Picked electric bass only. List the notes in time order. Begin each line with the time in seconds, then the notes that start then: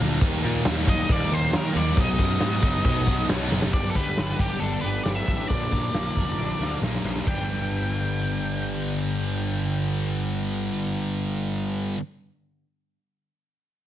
0.01 D2
0.21 D#2
0.44 A#2
0.66 D#2
1.09 D#2
1.32 D#2
1.53 D#3
1.75 D#2
1.98 B1
2.19 F#2
2.41 G#2
2.63 F#1
2.85 B1
3.07 B1
3.29 B1
3.51 F#1
3.73 G1
3.96 D2
4.18 G1
4.39 G1
4.61 G1
4.83 G1
5.05 G1
5.28 A1
5.50 A#1
5.72 A#1
5.93 A#1
6.17 F1
6.37 A#1
6.60 D2
6.82 A#1
7.04 A#1
7.27 G1